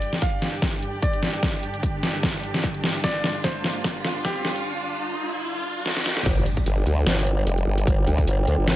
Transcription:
0.00 6.22 G2 medium
0.00 6.22 D3 medium
0.00 6.22 D4 medium
0.00 3.01 G4 medium
0.00 4.65 G4 medium
0.00 0.11 D5 medium
0.00 4.65 D5 medium
0.00 4.65 G5 medium
0.00 closed hi-hat medium
0.00 riser medium
0.13 snare soft
0.13 closed hi-hat soft
0.22 0.51 F5 medium
0.22 kick medium
0.22 closed hi-hat medium
0.42 snare soft
0.42 closed hi-hat medium
0.62 kick medium
0.62 snare medium
0.62 closed hi-hat medium
0.82 closed hi-hat medium
1.03 2.96 D5 medium
1.03 kick loud
1.03 closed hi-hat medium
1.13 closed hi-hat soft
1.23 snare medium
1.34 closed hi-hat medium
1.43 kick loud
1.43 snare medium
1.43 closed hi-hat medium
1.63 closed hi-hat medium
1.74 closed hi-hat soft
1.83 kick medium
1.83 closed hi-hat medium
2.03 snare medium
2.03 closed hi-hat medium
2.23 kick loud
2.23 snare medium
2.23 closed hi-hat medium
2.43 closed hi-hat medium
2.54 snare medium
2.64 kick loud
2.64 closed hi-hat medium
2.74 closed hi-hat soft
2.84 snare medium
2.95 closed hi-hat medium
3.04 6.23 F4 medium
3.04 3.33 D5 loud
3.04 kick loud
3.04 snare medium
3.04 closed hi-hat medium
3.24 snare medium
3.24 closed hi-hat medium
3.35 closed hi-hat soft
3.44 3.73 C5 medium
3.44 kick medium
3.44 snare medium
3.44 closed hi-hat medium
3.64 snare medium
3.64 closed hi-hat soft
3.84 kick loud
3.84 snare medium
3.84 closed hi-hat medium
4.05 snare medium
4.05 closed hi-hat medium
4.25 4.65 G4 medium
4.25 kick loud
4.25 snare medium
4.25 closed hi-hat medium
4.36 closed hi-hat soft
4.45 snare medium
4.56 closed hi-hat medium
5.86 snare medium
5.97 snare medium
6.06 snare medium
6.17 snare medium
6.26 6.45 G1 medium
6.26 8.76 G3 medium
6.26 8.76 D4 medium
6.26 8.76 D5 medium
6.26 8.76 G5 medium
6.26 kick loud
6.26 closed hi-hat medium
6.26 crash loud
6.26 impact medium
6.46 closed hi-hat medium
6.57 kick medium
6.57 closed hi-hat soft
6.66 6.85 G1 loud
6.66 closed hi-hat medium
6.86 7.05 D2 loud
6.86 closed hi-hat medium
7.07 7.45 G1 loud
7.07 snare loud
7.07 closed hi-hat medium
7.27 closed hi-hat medium
7.47 7.66 F1 loud
7.47 closed hi-hat medium
7.58 closed hi-hat soft
7.67 7.86 G1 loud
7.78 closed hi-hat medium
7.87 8.06 G1 loud
7.87 kick loud
7.87 closed hi-hat medium
8.07 8.26 D2 loud
8.07 closed hi-hat medium
8.18 kick medium
8.18 closed hi-hat soft
8.27 8.46 G1 loud
8.27 closed hi-hat medium
8.48 8.57 D2 medium
8.48 closed hi-hat medium
8.58 8.76 G1 loud
8.68 snare loud
8.68 closed hi-hat medium

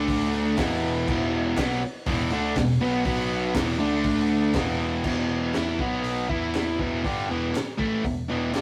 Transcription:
0.00 0.54 D2 medium
0.00 0.57 D3 medium
0.00 0.58 A3 medium
0.00 0.58 D4 loud
0.08 kick loud
0.08 open hi-hat medium
0.34 clap medium
0.57 1.04 E1 loud
0.57 1.06 E2 medium
0.57 1.07 B2 medium
0.57 1.07 E3 loud
0.57 kick loud
0.57 snare loud
0.57 clap medium
0.57 open hi-hat medium
1.07 1.54 E1 medium
1.07 1.57 E2 medium
1.07 1.56 B2 loud
1.07 1.57 E3 loud
1.07 kick loud
1.07 crash medium
1.57 1.80 B1 loud
1.57 1.81 B2 loud
1.57 1.82 F#3 loud
1.57 1.82 B3 loud
1.57 kick loud
1.57 snare loud
1.57 clap loud
1.57 open hi-hat soft
1.82 muted overdriven electric guitar stroke medium
1.82 muted picked electric bass stroke soft
2.06 2.30 E1 medium
2.06 2.31 E2 medium
2.06 2.31 B2 medium
2.06 2.31 E3 medium
2.06 kick loud
2.06 open hi-hat medium
2.31 2.55 D2 loud
2.31 2.55 D3 medium
2.31 2.56 A3 medium
2.31 2.56 D4 loud
2.31 clap medium
2.55 2.79 E1 medium
2.55 2.76 E2 medium
2.55 2.76 B2 medium
2.55 kick loud
2.55 snare loud
2.55 clap medium
2.55 open hi-hat medium
2.81 3.04 B1 loud
2.81 3.04 B2 loud
2.81 3.05 F#3 loud
2.81 3.05 B3 loud
3.05 3.53 B2 loud
3.05 3.55 F#3 loud
3.05 3.55 B3 loud
3.05 kick loud
3.05 open hi-hat medium
3.55 3.78 E1 medium
3.55 3.79 E2 medium
3.55 3.78 B2 loud
3.55 3.79 E3 loud
3.55 kick loud
3.55 snare loud
3.55 clap loud
3.55 open hi-hat medium
3.79 4.51 D2 loud
3.79 4.53 D3 medium
3.79 4.54 A3 medium
3.79 4.54 D4 loud
4.04 kick loud
4.04 open hi-hat medium
4.54 5.01 E1 loud
4.54 5.03 E2 medium
4.54 5.04 B2 medium
4.54 5.04 E3 loud
4.54 kick loud
4.54 snare loud
4.54 clap medium
4.54 open hi-hat medium
5.04 5.51 E1 medium
5.04 5.54 E2 medium
5.04 5.54 B2 loud
5.04 5.53 E3 loud
5.04 kick loud
5.04 crash loud
5.53 5.78 E2 medium
5.53 5.79 E3 medium
5.53 5.79 B3 medium
5.53 5.79 E4 loud
5.53 snare loud
5.53 clap medium
5.53 open hi-hat soft
5.79 6.26 B1 medium
5.79 6.29 B2 medium
5.79 6.29 F#3 loud
5.79 6.29 B3 loud
5.79 kick loud
6.04 open hi-hat medium
6.29 6.76 E2 medium
6.29 6.79 E3 medium
6.29 6.79 B3 medium
6.29 6.79 E4 loud
6.29 kick loud
6.54 snare loud
6.54 clap medium
6.54 open hi-hat medium
6.79 7.02 E1 medium
6.79 7.03 E2 loud
6.79 7.04 B2 loud
6.79 7.04 E3 loud
6.79 kick loud
7.04 7.28 G1 medium
7.04 7.28 G2 medium
7.04 7.29 D3 loud
7.04 7.29 G3 loud
7.04 kick loud
7.04 open hi-hat medium
7.29 7.53 E1 medium
7.29 7.53 E2 medium
7.29 7.54 B2 loud
7.29 7.54 E3 loud
7.55 muted picked electric bass stroke soft
7.55 muted overdriven electric guitar stroke medium
7.55 snare loud
7.55 clap loud
7.55 open hi-hat medium
7.78 8.02 A1 medium
7.78 8.03 A2 medium
7.78 8.03 E3 medium
7.78 8.03 A3 medium
7.78 kick medium
8.04 8.28 E1 medium
8.04 8.24 E2 medium
8.04 8.25 B2 medium
8.04 kick medium
8.04 open hi-hat medium
8.29 8.52 E1 medium
8.29 8.53 E2 medium
8.29 8.53 B2 medium
8.29 8.54 E3 loud
8.53 8.61 G1 loud
8.53 8.61 G2 medium
8.53 8.61 D3 medium
8.53 8.61 G3 loud
8.53 snare loud
8.53 clap medium
8.53 open hi-hat medium

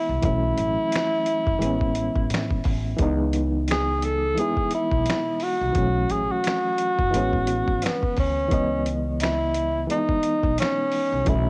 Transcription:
0.00 0.22 E3 medium
0.00 0.25 G#3 medium
0.00 0.25 B3 medium
0.00 0.22 E4 loud
0.00 0.25 E4 medium
0.09 0.22 C2 medium
0.22 0.54 B1 loud
0.22 1.30 E3 medium
0.22 1.31 F#3 medium
0.22 1.32 A3 medium
0.22 2.62 E4 loud
0.22 kick loud
0.22 closed hi-hat medium
0.27 1.33 C#4 medium
0.58 0.76 A1 medium
0.58 closed hi-hat medium
0.92 finger snap loud
0.92 snare loud
0.92 closed hi-hat medium
1.26 closed hi-hat medium
1.47 1.60 F#1 medium
1.47 kick medium
1.59 2.09 A1 medium
1.59 2.68 E3 medium
1.59 2.69 G#3 medium
1.59 2.70 B3 medium
1.59 closed hi-hat medium
1.65 2.71 C#4 medium
1.81 kick medium
1.95 closed hi-hat medium
2.16 2.28 A1 medium
2.16 kick medium
2.30 2.61 A2 medium
2.30 snare loud
2.30 closed hi-hat medium
2.35 finger snap medium
2.51 kick medium
2.64 2.95 A1 medium
2.64 kick loud
2.64 open hi-hat soft
2.97 4.33 C#2 loud
2.97 4.06 E3 medium
2.97 4.07 G#3 medium
2.97 4.08 B3 medium
2.97 kick loud
2.97 closed hi-hat medium
3.02 4.08 D#4 medium
3.33 closed hi-hat medium
3.68 4.06 G#4 loud
3.68 finger snap medium
3.68 snare loud
3.68 closed hi-hat medium
4.02 4.41 A4 loud
4.02 closed hi-hat medium
4.35 5.44 E3 medium
4.35 5.45 G#3 medium
4.35 5.46 B3 medium
4.35 closed hi-hat medium
4.39 5.47 E4 medium
4.39 4.73 G#4 loud
4.57 kick medium
4.71 5.44 E4 loud
4.71 closed hi-hat medium
4.91 5.04 B1 medium
4.91 kick medium
5.06 snare loud
5.06 closed hi-hat medium
5.10 finger snap medium
5.40 6.13 F#4 loud
5.40 open hi-hat soft
5.61 5.74 C2 medium
5.72 6.06 B1 loud
5.72 6.81 E3 medium
5.72 6.83 F#3 medium
5.72 6.83 A3 medium
5.72 kick loud
5.72 closed hi-hat medium
5.78 6.84 C#4 medium
6.10 6.28 A1 medium
6.10 6.33 G#4 loud
6.10 closed hi-hat medium
6.32 7.86 F#4 loud
6.44 finger snap medium
6.44 snare loud
6.44 closed hi-hat medium
6.78 closed hi-hat medium
6.99 7.11 F#1 medium
6.99 kick medium
7.11 7.61 A1 loud
7.11 8.20 E3 medium
7.11 8.21 G#3 medium
7.11 closed hi-hat medium
7.15 8.22 B3 medium
7.15 8.22 C#4 loud
7.33 kick medium
7.47 closed hi-hat medium
7.68 7.81 G#1 medium
7.68 kick medium
7.82 8.18 B3 medium
7.82 snare loud
7.82 closed hi-hat loud
7.86 finger snap medium
8.03 kick medium
8.16 8.47 D2 loud
8.16 8.92 C#4 loud
8.16 kick loud
8.16 open hi-hat soft
8.48 9.85 C#2 loud
8.48 9.57 E3 medium
8.48 9.58 G#3 medium
8.48 9.59 B3 medium
8.48 kick loud
8.48 closed hi-hat medium
8.54 9.60 D#5 medium
8.86 closed hi-hat medium
9.20 9.86 E4 loud
9.20 finger snap medium
9.20 snare loud
9.20 closed hi-hat medium
9.54 closed hi-hat medium
9.87 10.96 E3 medium
9.87 10.97 G#3 medium
9.87 10.98 B3 medium
9.87 closed hi-hat medium
9.91 10.55 D#4 loud
9.91 10.98 D#4 medium
10.09 kick medium
10.23 closed hi-hat medium
10.43 10.56 B1 medium
10.43 kick medium
10.58 11.31 C#4 loud
10.58 snare loud
10.58 closed hi-hat medium
10.62 finger snap medium
10.92 open hi-hat soft
11.13 11.25 C2 loud
11.25 11.50 B1 loud
11.25 11.50 E3 medium
11.25 11.50 F#3 medium
11.25 11.50 A3 medium
11.25 kick loud
11.25 closed hi-hat medium
11.29 11.50 C#4 medium
11.29 11.50 E4 loud

